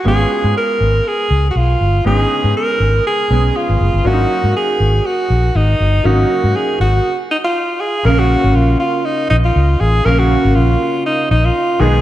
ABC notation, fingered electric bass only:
X:1
M:4/4
L:1/16
Q:"Swing 16ths" 1/4=120
K:A#phr
V:1 name="Fingered electric bass" clef=bass
G,,,2 z G,, z2 G,,,2 z2 C,,2 B,,,2 =G,,,2 | G,,,2 z G,, z2 G,,,2 z2 B,,,2 z G,,, F,,, =G,,, | G,,,2 z G,, z2 G,,,2 z2 A,,,2 G,,,2 =G,,,2 | G,,,2 z G,, z2 G,,,2 z8 |
A,,,3 G,,, A,,,2 z4 A,,,2 C,,2 =A,,,2 | A,,,3 G,,, A,,,2 z4 A,,,2 z2 B,,,2 |]